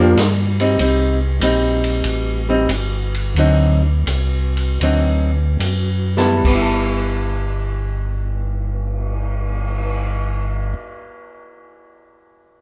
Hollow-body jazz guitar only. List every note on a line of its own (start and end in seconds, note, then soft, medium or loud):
0.00 0.16 F3 medium
0.00 0.16 A#3 medium
0.00 0.17 D4 medium
0.60 0.78 G3 medium
0.60 0.78 C4 medium
0.60 0.78 D#4 medium
0.80 1.18 G3 soft
0.80 1.18 C4 soft
0.80 1.18 D#4 soft
1.42 2.40 G3 medium
1.42 2.40 C4 medium
1.42 2.41 D#4 medium
2.49 2.68 G3 medium
2.49 2.68 C4 medium
2.49 2.68 D#4 medium
3.38 3.80 D3 medium
3.38 3.80 F#3 medium
3.38 3.81 C4 medium
3.38 3.81 D#4 medium
4.82 5.29 D3 soft
4.82 5.29 F#3 soft
4.82 5.30 C4 medium
4.82 5.30 D#4 medium
6.17 6.36 G3 medium
6.17 6.42 B3 medium
6.17 6.43 E4 medium
6.17 6.43 A4 medium
6.37 11.16 G3 soft
6.47 11.26 B3 soft
6.55 11.34 E4 medium
6.62 11.41 A4 medium